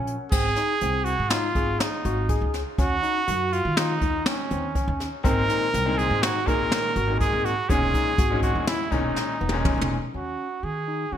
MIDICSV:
0, 0, Header, 1, 6, 480
1, 0, Start_track
1, 0, Tempo, 491400
1, 313, Time_signature, 5, 2, 24, 8
1, 10915, End_track
2, 0, Start_track
2, 0, Title_t, "Trumpet"
2, 0, Program_c, 0, 56
2, 306, Note_on_c, 0, 68, 102
2, 1020, Note_on_c, 0, 66, 92
2, 1035, Note_off_c, 0, 68, 0
2, 1266, Note_on_c, 0, 65, 94
2, 1281, Note_off_c, 0, 66, 0
2, 1758, Note_on_c, 0, 63, 76
2, 1773, Note_off_c, 0, 65, 0
2, 2481, Note_off_c, 0, 63, 0
2, 2732, Note_on_c, 0, 66, 104
2, 3446, Note_on_c, 0, 65, 100
2, 3460, Note_off_c, 0, 66, 0
2, 3686, Note_on_c, 0, 63, 87
2, 3701, Note_off_c, 0, 65, 0
2, 4163, Note_on_c, 0, 61, 71
2, 4178, Note_off_c, 0, 63, 0
2, 4884, Note_off_c, 0, 61, 0
2, 5132, Note_on_c, 0, 70, 110
2, 5841, Note_on_c, 0, 68, 99
2, 5856, Note_off_c, 0, 70, 0
2, 6081, Note_on_c, 0, 66, 94
2, 6096, Note_off_c, 0, 68, 0
2, 6324, Note_on_c, 0, 70, 107
2, 6339, Note_off_c, 0, 66, 0
2, 7033, Note_off_c, 0, 70, 0
2, 7039, Note_on_c, 0, 68, 94
2, 7280, Note_on_c, 0, 66, 89
2, 7294, Note_off_c, 0, 68, 0
2, 7516, Note_on_c, 0, 68, 103
2, 7530, Note_off_c, 0, 66, 0
2, 8226, Note_off_c, 0, 68, 0
2, 8232, Note_on_c, 0, 66, 83
2, 8455, Note_off_c, 0, 66, 0
2, 8473, Note_on_c, 0, 64, 86
2, 8712, Note_on_c, 0, 63, 76
2, 8727, Note_off_c, 0, 64, 0
2, 9670, Note_off_c, 0, 63, 0
2, 9913, Note_on_c, 0, 66, 66
2, 10393, Note_on_c, 0, 68, 70
2, 10408, Note_off_c, 0, 66, 0
2, 10872, Note_on_c, 0, 66, 72
2, 10887, Note_off_c, 0, 68, 0
2, 10915, Note_off_c, 0, 66, 0
2, 10915, End_track
3, 0, Start_track
3, 0, Title_t, "Tine electric piano"
3, 0, Program_c, 1, 4
3, 0, Note_on_c, 1, 61, 90
3, 147, Note_off_c, 1, 61, 0
3, 315, Note_on_c, 1, 60, 81
3, 473, Note_off_c, 1, 60, 0
3, 558, Note_on_c, 1, 63, 60
3, 715, Note_off_c, 1, 63, 0
3, 801, Note_on_c, 1, 60, 67
3, 1115, Note_off_c, 1, 60, 0
3, 1281, Note_on_c, 1, 63, 76
3, 1438, Note_off_c, 1, 63, 0
3, 1521, Note_on_c, 1, 68, 68
3, 1836, Note_off_c, 1, 68, 0
3, 2006, Note_on_c, 1, 66, 67
3, 2162, Note_off_c, 1, 66, 0
3, 2243, Note_on_c, 1, 68, 79
3, 2558, Note_off_c, 1, 68, 0
3, 2722, Note_on_c, 1, 61, 83
3, 2880, Note_off_c, 1, 61, 0
3, 2959, Note_on_c, 1, 63, 69
3, 3118, Note_off_c, 1, 63, 0
3, 3200, Note_on_c, 1, 66, 78
3, 3517, Note_off_c, 1, 66, 0
3, 3682, Note_on_c, 1, 65, 81
3, 3840, Note_off_c, 1, 65, 0
3, 3922, Note_on_c, 1, 63, 65
3, 4238, Note_off_c, 1, 63, 0
3, 4407, Note_on_c, 1, 60, 66
3, 4564, Note_off_c, 1, 60, 0
3, 4643, Note_on_c, 1, 61, 82
3, 4958, Note_off_c, 1, 61, 0
3, 5121, Note_on_c, 1, 60, 90
3, 5279, Note_off_c, 1, 60, 0
3, 5360, Note_on_c, 1, 63, 75
3, 5518, Note_off_c, 1, 63, 0
3, 5603, Note_on_c, 1, 60, 73
3, 5917, Note_off_c, 1, 60, 0
3, 6084, Note_on_c, 1, 63, 82
3, 6240, Note_off_c, 1, 63, 0
3, 6325, Note_on_c, 1, 68, 70
3, 6638, Note_off_c, 1, 68, 0
3, 6804, Note_on_c, 1, 66, 72
3, 6959, Note_off_c, 1, 66, 0
3, 7041, Note_on_c, 1, 68, 81
3, 7354, Note_off_c, 1, 68, 0
3, 7521, Note_on_c, 1, 61, 82
3, 7676, Note_off_c, 1, 61, 0
3, 7756, Note_on_c, 1, 63, 69
3, 7913, Note_off_c, 1, 63, 0
3, 7995, Note_on_c, 1, 66, 75
3, 8309, Note_off_c, 1, 66, 0
3, 8470, Note_on_c, 1, 64, 77
3, 8628, Note_off_c, 1, 64, 0
3, 8709, Note_on_c, 1, 63, 73
3, 9024, Note_off_c, 1, 63, 0
3, 9189, Note_on_c, 1, 59, 70
3, 9347, Note_off_c, 1, 59, 0
3, 9425, Note_on_c, 1, 61, 82
3, 9741, Note_off_c, 1, 61, 0
3, 9910, Note_on_c, 1, 61, 61
3, 10224, Note_off_c, 1, 61, 0
3, 10626, Note_on_c, 1, 63, 51
3, 10784, Note_off_c, 1, 63, 0
3, 10864, Note_on_c, 1, 61, 56
3, 10915, Note_off_c, 1, 61, 0
3, 10915, End_track
4, 0, Start_track
4, 0, Title_t, "Grand piano"
4, 0, Program_c, 2, 0
4, 0, Note_on_c, 2, 54, 55
4, 0, Note_on_c, 2, 58, 49
4, 0, Note_on_c, 2, 61, 58
4, 274, Note_off_c, 2, 54, 0
4, 277, Note_off_c, 2, 58, 0
4, 280, Note_off_c, 2, 61, 0
4, 5114, Note_on_c, 2, 46, 83
4, 5122, Note_on_c, 2, 51, 68
4, 5128, Note_on_c, 2, 56, 68
4, 5133, Note_on_c, 2, 60, 86
4, 5525, Note_off_c, 2, 46, 0
4, 5529, Note_off_c, 2, 51, 0
4, 5532, Note_off_c, 2, 56, 0
4, 5535, Note_off_c, 2, 60, 0
4, 5714, Note_on_c, 2, 46, 79
4, 5721, Note_on_c, 2, 51, 72
4, 5726, Note_on_c, 2, 56, 71
4, 5735, Note_on_c, 2, 60, 89
4, 6124, Note_off_c, 2, 46, 0
4, 6127, Note_off_c, 2, 51, 0
4, 6130, Note_off_c, 2, 56, 0
4, 6135, Note_off_c, 2, 60, 0
4, 6310, Note_on_c, 2, 46, 83
4, 6315, Note_on_c, 2, 51, 77
4, 6321, Note_on_c, 2, 56, 73
4, 6325, Note_on_c, 2, 58, 84
4, 6721, Note_off_c, 2, 46, 0
4, 6723, Note_off_c, 2, 51, 0
4, 6727, Note_off_c, 2, 56, 0
4, 6729, Note_off_c, 2, 58, 0
4, 6907, Note_on_c, 2, 46, 68
4, 6914, Note_on_c, 2, 51, 64
4, 6919, Note_on_c, 2, 56, 58
4, 6927, Note_on_c, 2, 58, 75
4, 7318, Note_off_c, 2, 46, 0
4, 7322, Note_off_c, 2, 51, 0
4, 7325, Note_off_c, 2, 56, 0
4, 7328, Note_off_c, 2, 58, 0
4, 7509, Note_on_c, 2, 46, 73
4, 7512, Note_on_c, 2, 51, 71
4, 7519, Note_on_c, 2, 56, 68
4, 7525, Note_on_c, 2, 61, 86
4, 7918, Note_off_c, 2, 46, 0
4, 7920, Note_off_c, 2, 51, 0
4, 7923, Note_off_c, 2, 56, 0
4, 7926, Note_off_c, 2, 61, 0
4, 8108, Note_on_c, 2, 46, 79
4, 8110, Note_on_c, 2, 51, 63
4, 8121, Note_on_c, 2, 56, 69
4, 8126, Note_on_c, 2, 61, 85
4, 8517, Note_off_c, 2, 46, 0
4, 8518, Note_off_c, 2, 51, 0
4, 8523, Note_off_c, 2, 56, 0
4, 8526, Note_off_c, 2, 61, 0
4, 8700, Note_on_c, 2, 46, 83
4, 8708, Note_on_c, 2, 51, 75
4, 8712, Note_on_c, 2, 56, 70
4, 8716, Note_on_c, 2, 61, 88
4, 9112, Note_off_c, 2, 46, 0
4, 9116, Note_off_c, 2, 51, 0
4, 9118, Note_off_c, 2, 56, 0
4, 9120, Note_off_c, 2, 61, 0
4, 9295, Note_on_c, 2, 46, 85
4, 9301, Note_on_c, 2, 51, 71
4, 9309, Note_on_c, 2, 56, 76
4, 9313, Note_on_c, 2, 61, 86
4, 9709, Note_off_c, 2, 46, 0
4, 9712, Note_off_c, 2, 51, 0
4, 9716, Note_off_c, 2, 56, 0
4, 9718, Note_off_c, 2, 61, 0
4, 10915, End_track
5, 0, Start_track
5, 0, Title_t, "Upright bass"
5, 0, Program_c, 3, 32
5, 0, Note_on_c, 3, 34, 89
5, 151, Note_off_c, 3, 34, 0
5, 312, Note_on_c, 3, 32, 90
5, 510, Note_off_c, 3, 32, 0
5, 798, Note_on_c, 3, 36, 84
5, 1094, Note_off_c, 3, 36, 0
5, 1164, Note_on_c, 3, 44, 76
5, 1458, Note_off_c, 3, 44, 0
5, 1517, Note_on_c, 3, 32, 80
5, 1716, Note_off_c, 3, 32, 0
5, 2001, Note_on_c, 3, 32, 90
5, 2298, Note_off_c, 3, 32, 0
5, 2358, Note_on_c, 3, 37, 88
5, 2557, Note_off_c, 3, 37, 0
5, 2720, Note_on_c, 3, 39, 93
5, 2919, Note_off_c, 3, 39, 0
5, 3203, Note_on_c, 3, 42, 94
5, 3500, Note_off_c, 3, 42, 0
5, 3566, Note_on_c, 3, 51, 85
5, 3862, Note_off_c, 3, 51, 0
5, 3921, Note_on_c, 3, 39, 85
5, 4120, Note_off_c, 3, 39, 0
5, 4406, Note_on_c, 3, 39, 90
5, 4702, Note_off_c, 3, 39, 0
5, 4762, Note_on_c, 3, 39, 94
5, 4961, Note_off_c, 3, 39, 0
5, 5124, Note_on_c, 3, 32, 95
5, 5321, Note_off_c, 3, 32, 0
5, 5604, Note_on_c, 3, 36, 90
5, 5899, Note_off_c, 3, 36, 0
5, 5962, Note_on_c, 3, 44, 86
5, 6258, Note_off_c, 3, 44, 0
5, 6321, Note_on_c, 3, 32, 78
5, 6518, Note_off_c, 3, 32, 0
5, 6797, Note_on_c, 3, 32, 97
5, 7093, Note_off_c, 3, 32, 0
5, 7157, Note_on_c, 3, 32, 89
5, 7354, Note_off_c, 3, 32, 0
5, 7516, Note_on_c, 3, 28, 91
5, 7713, Note_off_c, 3, 28, 0
5, 7994, Note_on_c, 3, 32, 94
5, 8289, Note_off_c, 3, 32, 0
5, 8354, Note_on_c, 3, 40, 84
5, 8649, Note_off_c, 3, 40, 0
5, 8710, Note_on_c, 3, 28, 83
5, 8908, Note_off_c, 3, 28, 0
5, 9191, Note_on_c, 3, 28, 92
5, 9486, Note_off_c, 3, 28, 0
5, 9549, Note_on_c, 3, 28, 87
5, 9746, Note_off_c, 3, 28, 0
5, 9906, Note_on_c, 3, 39, 65
5, 10105, Note_off_c, 3, 39, 0
5, 10384, Note_on_c, 3, 51, 70
5, 10781, Note_off_c, 3, 51, 0
5, 10862, Note_on_c, 3, 51, 57
5, 10915, Note_off_c, 3, 51, 0
5, 10915, End_track
6, 0, Start_track
6, 0, Title_t, "Drums"
6, 70, Note_on_c, 9, 42, 64
6, 168, Note_off_c, 9, 42, 0
6, 311, Note_on_c, 9, 36, 112
6, 311, Note_on_c, 9, 49, 93
6, 408, Note_off_c, 9, 49, 0
6, 409, Note_off_c, 9, 36, 0
6, 549, Note_on_c, 9, 38, 33
6, 549, Note_on_c, 9, 42, 58
6, 647, Note_off_c, 9, 38, 0
6, 647, Note_off_c, 9, 42, 0
6, 793, Note_on_c, 9, 42, 84
6, 890, Note_off_c, 9, 42, 0
6, 1032, Note_on_c, 9, 42, 58
6, 1129, Note_off_c, 9, 42, 0
6, 1273, Note_on_c, 9, 38, 100
6, 1273, Note_on_c, 9, 42, 87
6, 1371, Note_off_c, 9, 38, 0
6, 1371, Note_off_c, 9, 42, 0
6, 1516, Note_on_c, 9, 36, 68
6, 1517, Note_on_c, 9, 42, 64
6, 1614, Note_off_c, 9, 36, 0
6, 1614, Note_off_c, 9, 42, 0
6, 1761, Note_on_c, 9, 38, 104
6, 1761, Note_on_c, 9, 42, 82
6, 1859, Note_off_c, 9, 38, 0
6, 1859, Note_off_c, 9, 42, 0
6, 2002, Note_on_c, 9, 42, 68
6, 2099, Note_off_c, 9, 42, 0
6, 2237, Note_on_c, 9, 42, 75
6, 2239, Note_on_c, 9, 36, 93
6, 2335, Note_off_c, 9, 42, 0
6, 2337, Note_off_c, 9, 36, 0
6, 2479, Note_on_c, 9, 38, 33
6, 2479, Note_on_c, 9, 42, 58
6, 2577, Note_off_c, 9, 38, 0
6, 2577, Note_off_c, 9, 42, 0
6, 2719, Note_on_c, 9, 42, 81
6, 2720, Note_on_c, 9, 36, 106
6, 2816, Note_off_c, 9, 42, 0
6, 2817, Note_off_c, 9, 36, 0
6, 2961, Note_on_c, 9, 42, 59
6, 3059, Note_off_c, 9, 42, 0
6, 3202, Note_on_c, 9, 42, 83
6, 3300, Note_off_c, 9, 42, 0
6, 3445, Note_on_c, 9, 42, 58
6, 3542, Note_off_c, 9, 42, 0
6, 3682, Note_on_c, 9, 38, 105
6, 3682, Note_on_c, 9, 42, 82
6, 3780, Note_off_c, 9, 38, 0
6, 3780, Note_off_c, 9, 42, 0
6, 3920, Note_on_c, 9, 42, 56
6, 3922, Note_on_c, 9, 36, 71
6, 4018, Note_off_c, 9, 42, 0
6, 4020, Note_off_c, 9, 36, 0
6, 4160, Note_on_c, 9, 38, 102
6, 4160, Note_on_c, 9, 42, 74
6, 4257, Note_off_c, 9, 38, 0
6, 4257, Note_off_c, 9, 42, 0
6, 4401, Note_on_c, 9, 42, 63
6, 4499, Note_off_c, 9, 42, 0
6, 4642, Note_on_c, 9, 36, 87
6, 4642, Note_on_c, 9, 42, 73
6, 4740, Note_off_c, 9, 36, 0
6, 4740, Note_off_c, 9, 42, 0
6, 4886, Note_on_c, 9, 38, 36
6, 4886, Note_on_c, 9, 42, 62
6, 4983, Note_off_c, 9, 38, 0
6, 4983, Note_off_c, 9, 42, 0
6, 5123, Note_on_c, 9, 36, 107
6, 5125, Note_on_c, 9, 42, 84
6, 5221, Note_off_c, 9, 36, 0
6, 5223, Note_off_c, 9, 42, 0
6, 5367, Note_on_c, 9, 38, 36
6, 5367, Note_on_c, 9, 42, 58
6, 5465, Note_off_c, 9, 38, 0
6, 5465, Note_off_c, 9, 42, 0
6, 5608, Note_on_c, 9, 38, 34
6, 5608, Note_on_c, 9, 42, 84
6, 5706, Note_off_c, 9, 38, 0
6, 5706, Note_off_c, 9, 42, 0
6, 5848, Note_on_c, 9, 42, 59
6, 5946, Note_off_c, 9, 42, 0
6, 6085, Note_on_c, 9, 38, 98
6, 6085, Note_on_c, 9, 42, 83
6, 6182, Note_off_c, 9, 38, 0
6, 6182, Note_off_c, 9, 42, 0
6, 6322, Note_on_c, 9, 36, 75
6, 6324, Note_on_c, 9, 42, 58
6, 6420, Note_off_c, 9, 36, 0
6, 6421, Note_off_c, 9, 42, 0
6, 6561, Note_on_c, 9, 38, 109
6, 6561, Note_on_c, 9, 42, 79
6, 6658, Note_off_c, 9, 38, 0
6, 6658, Note_off_c, 9, 42, 0
6, 6798, Note_on_c, 9, 42, 60
6, 6896, Note_off_c, 9, 42, 0
6, 7039, Note_on_c, 9, 36, 89
6, 7041, Note_on_c, 9, 42, 75
6, 7137, Note_off_c, 9, 36, 0
6, 7138, Note_off_c, 9, 42, 0
6, 7281, Note_on_c, 9, 42, 61
6, 7379, Note_off_c, 9, 42, 0
6, 7517, Note_on_c, 9, 36, 110
6, 7520, Note_on_c, 9, 42, 83
6, 7615, Note_off_c, 9, 36, 0
6, 7617, Note_off_c, 9, 42, 0
6, 7756, Note_on_c, 9, 36, 70
6, 7757, Note_on_c, 9, 42, 56
6, 7854, Note_off_c, 9, 36, 0
6, 7855, Note_off_c, 9, 42, 0
6, 7992, Note_on_c, 9, 42, 76
6, 7993, Note_on_c, 9, 36, 113
6, 8090, Note_off_c, 9, 42, 0
6, 8091, Note_off_c, 9, 36, 0
6, 8231, Note_on_c, 9, 42, 57
6, 8232, Note_on_c, 9, 36, 70
6, 8328, Note_off_c, 9, 42, 0
6, 8330, Note_off_c, 9, 36, 0
6, 8473, Note_on_c, 9, 38, 109
6, 8473, Note_on_c, 9, 42, 76
6, 8570, Note_off_c, 9, 38, 0
6, 8570, Note_off_c, 9, 42, 0
6, 8710, Note_on_c, 9, 36, 73
6, 8712, Note_on_c, 9, 42, 58
6, 8808, Note_off_c, 9, 36, 0
6, 8809, Note_off_c, 9, 42, 0
6, 8951, Note_on_c, 9, 38, 64
6, 9049, Note_off_c, 9, 38, 0
6, 9270, Note_on_c, 9, 48, 76
6, 9367, Note_off_c, 9, 48, 0
6, 9426, Note_on_c, 9, 47, 69
6, 9427, Note_on_c, 9, 36, 98
6, 9524, Note_off_c, 9, 36, 0
6, 9524, Note_off_c, 9, 47, 0
6, 9587, Note_on_c, 9, 45, 87
6, 9684, Note_off_c, 9, 45, 0
6, 10915, End_track
0, 0, End_of_file